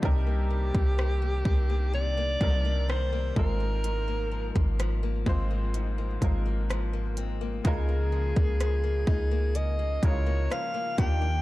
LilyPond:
<<
  \new Staff \with { instrumentName = "Alto saxophone" } { \time 4/4 \key c \minor \tempo 4 = 63 g'2 d''4 c''8 bes'8~ | bes'4 r2. | aes'2 ees''8 des''8 f''8 g''8 | }
  \new Staff \with { instrumentName = "Grand piano" } { \time 4/4 \key c \minor <c g d' ees' bes'>4. r4 <c g d' ees' bes'>4 <aes, aes c' f' bes'>8~ | <aes, aes c' f' bes'>4 r8 <aes, aes c' f' c''>8 r8 <aes, aes c' f' bes'>4 r8 | <des aes ees' f' bes'>4. r4 <des aes ees' e' f' bes'>4 <ees bes d' f' g'>8 | }
  \new Staff \with { instrumentName = "Steel-string acoustic guitar" } { \time 4/4 \key c \minor c16 bes16 ees16 bes16 ees16 bes16 d'16 bes16 c16 bes16 ees16 bes16 ees16 bes16 aes,16 bes16 | aes,16 bes16 f16 bes16 f16 bes16 c'16 bes16 aes,16 bes16 f16 bes16 f16 bes16 c'16 bes16 | des16 bes16 f16 bes16 f16 bes16 ees'16 bes16 des16 bes16 f16 bes16 f16 bes16 ees16 d'16 | }
  \new Staff \with { instrumentName = "808-style bass" } { \clef bass \time 4/4 \key c \minor c,8. c,8. c,4 c,4 aes,,8~ | aes,,8. aes,,8. aes,,4 aes,,4. | des,8. des,8. des,4 des,8 r8 ees,8 | }
  \new DrumStaff \with { instrumentName = "Drums" } \drummode { \time 4/4 bd8. bd16 ss8 bd8 r8 bd8 ss8 bd8 | hh8. bd16 <hh ss>8 bd8 hh8 <hh bd>8 <hh ss>8 hh8 | <hh bd>8. bd16 <hh ss>8 bd8 hh8 <hh bd>8 <hh ss>8 <hh bd>8 | }
>>